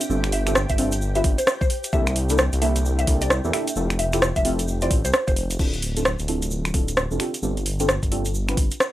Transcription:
Already playing: G4 E5 G5
0.01 closed hi-hat, shaker
0.09 G1 C4 D4 F4 G4 A4, shaker
0.24 finger snap, closed hi-hat, shaker
0.32 E5, open hi-hat
0.47 C4 D4 F4 G4 A4, finger snap, closed hi-hat, shaker
0.55 cross-stick, shaker
0.69 G1 E5, kick, closed hi-hat, shaker
0.78 C4 D4 F4 G4 A4, open hi-hat
0.92 closed hi-hat, shaker
1.01 shaker
1.15 C4 D4 F4 G4 B4 E5, closed hi-hat, shaker
1.24 G1, kick, open hi-hat
1.38 C5, closed hi-hat, shaker
1.47 cross-stick, shaker
1.61 C5, kick, shaker
1.70 open hi-hat
1.84 closed hi-hat, shaker
1.93 C2 A#3 D4 E4 G4 A4 E5, kick, shaker
2.07 finger snap, closed hi-hat, shaker
2.16 open hi-hat
2.29 A#3 D4 E4 G4 A4, closed hi-hat, shaker
2.38 cross-stick, shaker
2.53 C2, closed hi-hat, shaker
2.62 A#3 D4 E4 G4 A4 E5, open hi-hat
2.76 closed hi-hat, shaker
2.85 shaker
2.99 E5, closed hi-hat, shaker
3.07 C2 A#3 D4 E4 G4 A4, kick, open hi-hat
3.21 D5, closed hi-hat, shaker
3.30 cross-stick, shaker
3.44 E2 A#3 D4 E4 G4 A4, shaker
3.53 A#3 D4 E4 G4 A4 E5, finger snap, open hi-hat
3.67 closed hi-hat, shaker
3.76 F1 C4 E4 F4 G4 A4, shaker
3.90 finger snap, closed hi-hat, shaker
3.99 E5, open hi-hat
4.13 C4 E4 F4 G4 A4, finger snap, closed hi-hat, shaker
4.22 cross-stick, shaker
4.36 F1 E5, kick, closed hi-hat, shaker
4.45 C4 E4 F4 G4 A4, open hi-hat
4.59 closed hi-hat, shaker
4.68 shaker
4.81 C4 E4 F4 G4 C5 D5, closed hi-hat, shaker
4.91 A1, kick, open hi-hat
5.05 C2 C5, closed hi-hat, shaker
5.13 cross-stick, shaker
5.27 F1 C5, kick, closed hi-hat, shaker
5.36 open hi-hat
5.50 closed hi-hat, shaker
5.59 D1 C4 D4 E4 F4 A4, kick, crash, shaker
5.74 closed hi-hat, shaker
5.82 open hi-hat
5.97 C4 D4 E4 F4 A4, closed hi-hat, shaker
6.05 cross-stick, shaker
6.19 D1, closed hi-hat, shaker
6.28 C4 D4 E4 F4 A4, open hi-hat
6.42 closed hi-hat, shaker
6.51 shaker
6.65 finger snap, closed hi-hat, shaker
6.74 D1 C4 D4 E4 F4 A4, kick, open hi-hat
6.88 closed hi-hat, shaker
6.97 cross-stick, shaker
7.11 F1 C4 D4 E4 F4 A4, shaker
7.20 C4 D4 F4 G4 A4, finger snap, open hi-hat
7.34 closed hi-hat, shaker
7.42 G1 C4 D4 F4 G4 A4, shaker
7.57 closed hi-hat, shaker
7.66 open hi-hat
7.80 C4 D4 F4 G4 A4, closed hi-hat, shaker
7.89 cross-stick, shaker
8.03 G1, kick, closed hi-hat, shaker
8.11 C4 D4 F4 G4 A4, open hi-hat
8.25 closed hi-hat, shaker
8.34 shaker
8.48 C4 D4 F4 G4 B4, finger snap, closed hi-hat, shaker
8.57 G1, kick, open hi-hat
8.71 closed hi-hat, shaker
8.80 cross-stick, shaker

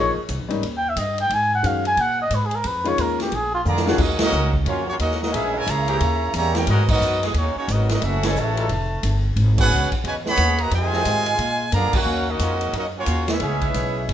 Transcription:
Already playing: A#1 F3 A#3 D#4 G#4
0.00 C#5
0.17 muted upright bass stroke
0.29 C2, kick, hi-hat pedal, ride
0.40 A#1
0.49 G#1 G3 A#3 C#4 D#4, ride
0.63 D#2, kick, ride
0.77 G5
0.89 E5
0.96 G2 D#5, kick, hi-hat pedal, ride
1.18 G5, ride
1.30 G#2, kick, ride
1.34 G#5
1.55 F#5
1.63 F#2 D#3 G#3 C#4 F#4 F5, kick, hi-hat pedal, ride
1.85 G#5, ride
1.97 A#2 F#5, kick, ride
2.22 D#5
2.30 G#2, kick, hi-hat pedal, ride
2.35 B4
2.46 G#4
2.51 ride
2.55 A#4
2.64 F2 B4, kick, ride
2.84 D#3 G#3 C#4 F4 C#5, ride
2.98 D#2 A#4, kick, hi-hat pedal, ride
3.20 G4, snare, ride
3.32 A#1 G#4, kick, ride
3.54 F4
3.64 F2 D3 F3 A#3 G#4 D5 F5 A#5, hi-hat pedal, mid tom
3.77 snare
3.85 D#3 G#3 C#4 D4 F4 F#4 G#4 A#4 F#5, snare
3.98 D#2 F#3 A#3 C#4 D#4 A#4 D#5, kick, crash
4.02 F#4
4.19 F#3 A#3 D#4, snare, ride
4.23 C#4 F#4 A#4 D#5
4.32 C#2, hi-hat pedal
4.54 kick
4.65 F2 D#3 F#3 A#3 C#4 F4 F#4 C#5, kick, ride
4.86 F#3 A#3 C#4 F4 F#4 C#5
4.99 D#2 F#3 A#3 C#4 D#4 F#4 A#4 D#5, kick, hi-hat pedal, ride
5.11 snare
5.21 F#3 A#3 C#4 D#4 F#4 A#4 D#5, snare
5.32 A#1 E3 G#3 A#3 C#4 E4 G#4 A#4 E5, kick, ride
5.53 C#3 E3 G#3 E4 A#4 C#5 G#5
5.66 C#2 C#3 A#3 E4 G#4 C#5 E5 A#5, kick, hi-hat pedal, ride
5.87 E3 C#4 D#4 G4, ride
6.00 D#2, kick, ride
6.34 E2 C#3 G3 A#3 G4 C#5 E5 A#5, kick, hi-hat pedal, ride
6.55 A#3 C#4 E4 G4 A#4 C#5 G5, snare, ride
6.67 G#2 F#3 G#3 B3 D#4 F#4 A#4 D#5, kick, ride
6.71 B3
6.89 F#3 B3 D#4 F#4 A#4 D#5, kick, crash
7.00 F#2, hi-hat pedal
7.22 G#3 B3 F#4 G#4, snare, ride
7.34 D#2 A#3 C#4 C#5, kick, ride
7.38 D#4 F#4
7.55 A#3 C#4 D#4 F#4 C#5, muted upright bass stroke
7.68 G#1 F#3 B3 D#4 D#5, kick, hi-hat pedal, ride
7.72 F#4 A#4
7.89 F#3 B3 D#4 F#4 A#4 D#5, snare, ride
8.02 F#1 A3 C#4 E4 F#4 A4 E5, kick, ride
8.23 F#3 G#3 C#4 E4 A4 C#5 G#5, snare, ride
8.36 A1 C#3 E3 A3 F#4 C#5 E5 A5, kick, hi-hat pedal
8.57 G3 D#4 F4 A4, ride
8.69 F1, kick, ride
9.03 G1, kick, hi-hat pedal, ride
9.36 G#1, kick, ride
9.58 B3 C#4 F#4 G#4 B4 F#5, kick, crash
9.70 C#2, hi-hat pedal
9.91 muted upright bass stroke, kick, ride
10.04 E2 B2 C#3 G#3 F#4 B4 C#5 G#5, kick, ride
10.24 C#3 G#3 B3 C#5, snare
10.28 G#4 F#5 B5
10.37 D#2, kick, hi-hat pedal, ride
10.58 A#3 F#4 B4 D#5 A#5, ride
10.71 F2 C3 D#3 G#3 F4 C5 D#5 G#5, kick, ride
10.92 F3 C4 D#4 G#4, snare
11.05 G#2, kick, hi-hat pedal, ride
11.26 ride
11.39 A#2, kick, ride
11.72 F#2 D3 F3 A#3 G#4 D5 F5 A#5, kick, hi-hat pedal, ride
11.93 D#3 F#3 A#3 C#4 F#4 A#4 F5 F#5, muted upright bass stroke, kick, crash
12.05 D#2
12.28 A#3 C#4 D#4 F#4 A#4 D#5
12.39 F2 D#3 F#3 C#4 F4, kick, hi-hat pedal, ride
12.61 ride
12.73 F#2 F#3 A#3 D#4, kick, ride
12.78 C#4 F#4 A#4 D#5
12.97 F#3 A#3 C#4 F4 F#4 C#5
13.06 D#2, kick, hi-hat pedal, ride
13.28 G#3 B3 C#4 E4 G#4 B4 E5, snare, ride
13.39 C#2 E3 B3 C#4 G#4, kick, ride
13.61 kick, ride
13.74 B1, kick, hi-hat pedal, ride
14.08 F#1, kick, ride

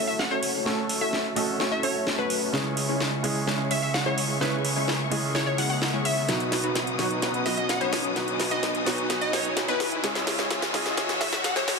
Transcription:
Already playing: F#1 A3 C#4 F#4 A4 F#5 C#6, riser
0.07 E5
0.19 F#5, snare
0.31 F#1 A3 C#4 F#4 A4 C#5
0.43 open hi-hat
0.65 F#1 A3 C#4 F#4 A4 C#5 E5, snare
0.89 open hi-hat
1.01 F#1 A3 C#4 F#4 A4 C#5 E5
1.13 snare
1.35 F#1 A3 C#4 F#4 A4 D#5, open hi-hat
1.60 F#1 A3 C#4 F#4 A4 C#5, snare
1.72 E5
1.83 F#1 A3 C#4 F#4 A4 C#5, open hi-hat
2.07 snare
2.19 F#2 A3 C#4 F#4 A4 B4 C#5
2.30 open hi-hat
2.52 C#2 C#3 G#3 C#4 E4 G#4 C#5 E5 C#6, snare
2.77 open hi-hat
2.89 C#2 G#3 C#4 E4 G#4 C#5
3.00 snare
3.23 C#2 C#3 G#3 C#4 E4 G#4 D#5, open hi-hat
3.47 C#2 G#3 C#4 E4 G#4 C#5, snare
3.71 C#2 G#3 C#4 E4 G#4 C#5 E5, open hi-hat
3.83 E5
3.94 F#5, snare
4.06 C#2 G#3 C#4 E4 G#4 C#5
4.18 open hi-hat
4.40 C#2 C#3 G#3 C#4 E4 G#4 B4 C#5, snare
4.65 open hi-hat
4.76 C#2 G#3 C#4 E4 G#4 C#5
4.88 snare
5.10 C#2 C#3 G#3 C#4 E4 G#4 D#5, open hi-hat
5.35 C#2 G#3 C#4 E4 G#4 C#5, snare
5.46 C#5
5.58 C#2 G#3 C#4 E4 G#4 C#5 F#5, open hi-hat
5.70 F#5
5.82 snare
5.93 C#2 G#3 C#4 E4 G#4 C#5
6.05 E5, open hi-hat
6.28 B1 B2 F#3 B3 D#4 F#4 B4 F#5 D#6, snare, closed hi-hat
6.40 closed hi-hat
6.52 snare, open hi-hat
6.64 B1 F#3 B3 D#4 F#4 B4, closed hi-hat
6.75 snare, closed hi-hat
6.87 closed hi-hat
6.98 B1 B2 F#3 B3 D#4 F#4 C#5, snare, open hi-hat
7.11 closed hi-hat
7.22 B1 F#3 B3 D#4 F#4 B4, snare, closed hi-hat
7.34 closed hi-hat
7.46 B1 F#3 B3 D#4 F#4 B4 D#5, snare, open hi-hat
7.57 D#5, closed hi-hat
7.69 F#5, snare, closed hi-hat
7.81 B1 F#3 B3 D#4 F#4 B4 C#5, closed hi-hat
7.93 snare, open hi-hat
8.04 closed hi-hat
8.15 B1 B2 F#3 B3 D#4 F#4 B4 G#5, snare, closed hi-hat
8.28 closed hi-hat
8.40 snare, open hi-hat
8.51 B1 F#3 B3 D#4 F#4 B4 D#5, closed hi-hat
8.63 snare, closed hi-hat
8.75 closed hi-hat
8.85 B1 B2 F#3 B3 D#4 F#4 C#5, snare, open hi-hat
8.98 closed hi-hat
9.10 B1 F#3 B3 D#4 F#4 B4, snare, closed hi-hat
9.21 D#5, closed hi-hat
9.33 B1 F#3 B3 D#4 F#4 B4 C#5, snare, open hi-hat
9.45 closed hi-hat
9.57 snare, closed hi-hat
9.68 B1 F#3 B3 D#4 F#4 B4, closed hi-hat
9.80 snare, open hi-hat
9.92 closed hi-hat
10.03 C#2 C#3 G#3 C#4 E4 G#4 C#5 E6, snare, closed hi-hat
10.15 snare, closed hi-hat
10.27 snare, open hi-hat
10.39 C#2 G#3 C#4 E4 G#4 C#5, snare, closed hi-hat
10.51 snare, closed hi-hat
10.62 snare, closed hi-hat
10.73 C#2 C#3 G#3 C#4 E4 G#4 D#5, snare, open hi-hat
10.86 snare, closed hi-hat
10.97 C#2 G#3 C#4 E4 G#4 C#5, snare, closed hi-hat
11.09 snare, closed hi-hat
11.21 C#2 G#3 C#4 E4 G#4 C#5 E5, snare, open hi-hat
11.32 E5, snare
11.44 F#5, snare, closed hi-hat
11.56 C#2 G#3 C#4 E4 G#4 C#5, snare, closed hi-hat
11.68 snare, open hi-hat

